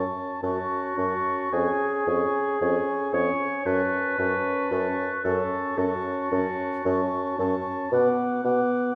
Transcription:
Already playing: C#4 A5 C#6
0.43 F#2 C#4 F#4 A5 C#6
0.97 F#2 C#4 A5 C#6
1.52 F2 C#4 G#4 G#5 C#6
2.07 F2 C#4 G#5 C#6
2.61 F2 C#4 G#5 C#6
3.13 F2 C#4 C#5 G#5 C#6
3.66 F#2 C#4 B4 A5 C#6
4.19 F#2 C#4 A5 C#6
4.72 F#2 C#4 A5 C#6
5.24 F#2 C#4 A4 A5 C#6
5.78 F#2 C#4 F#4 A5 C#6
6.32 F#2 C#4 A5 C#6
6.85 F#2 C#4 A5 C#6
7.38 F#2 C#4 A5 C#6
7.91 B2 B3 F#5 D6
8.44 B2 B3 F#5 D6

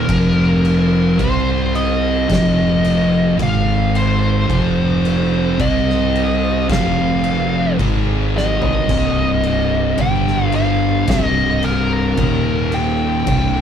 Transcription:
Already playing: A#4
0.06 F1 F2 C3 F3, kick, crash
0.65 crash
1.18 C2 C3 G3 C4 C5, kick, crash
1.75 D#5, crash
2.27 F1 F2 C3 F3, kick, crash
2.32 snare
2.84 crash
3.38 G#1 G#2 D#3 G#3, kick, crash
3.43 F5
3.95 C5, crash
4.47 F1 F2 C3 F3, kick, crash
5.05 crash
5.58 C2 C3 G3 C4 D#5, kick, crash
5.90 snare
6.15 crash
6.68 F1 F2 C3 F3, kick, crash
6.72 F5, snare
7.24 crash
7.78 G#1 G#2 D#3 G#3, kick, crash
8.37 D#5, snare
8.62 floor tom
8.89 C1 C2 G2 C3, kick, splash, crash
9.43 crash
9.98 G1 G2 D3 G3 G5, kick, crash
10.27 snare
10.52 F5, crash
11.07 C1 C2 G2 C3 D#5, kick, snare, crash
11.63 A#4, crash
12.17 D#1 D#2 A#2 D#3, kick, crash
12.72 G5, crash
13.27 C1 C2 G2 C3, kick, crash

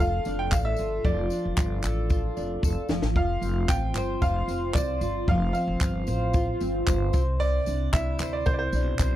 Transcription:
Already playing: F3 D4 A4
0.00 F1 F4 F5
0.25 F1 D4, tambourine
0.39 G5
0.51 A1 A4 F5, kick, clap, tambourine
0.65 E5
0.76 tambourine
0.79 G1 F4, tambourine
1.05 F1 F3 D5, kick, tambourine
1.30 D4, tambourine
1.45 F1
1.57 G1 F4, kick, clap, tambourine
1.82 A1 A4, clap, tambourine
2.10 F4, kick, tambourine
2.37 F1 D4, tambourine
2.63 F1 A4, kick, tambourine
2.89 F1 F3, snare, tambourine
3.02 A1, snare
3.16 F1 F3 F5, kick
3.42 F1 C4, tambourine
3.69 A1 F4 G5, kick, clap, tambourine
3.94 G1 C5, clap, tambourine
4.22 F1 F4 F5, kick, tambourine
4.48 F1 C4, tambourine
4.74 C2 C5 D5, kick, clap, tambourine
5.01 G1 F4, tambourine
5.28 F1 F3 F5, kick, tambourine
5.53 C4 F5, tambourine
5.68 F1
5.81 G1 F4, kick, clap, tambourine
6.07 A1 C5, tambourine
6.33 F4, kick, tambourine
6.60 G1 C4, tambourine
6.87 G1 C5, kick, clap, tambourine
7.13 C2 C3, kick, tambourine
7.39 C3 D5, tambourine
7.66 C2 D4, tambourine
7.93 C2 E4 E5, kick, clap, tambourine
8.19 D2 C5, clap, tambourine
8.33 D5
8.46 C2 E4 C5, kick, tambourine
8.53 D5
8.59 C5
8.72 B1 D4, tambourine
8.99 B1 C5, kick, clap, tambourine

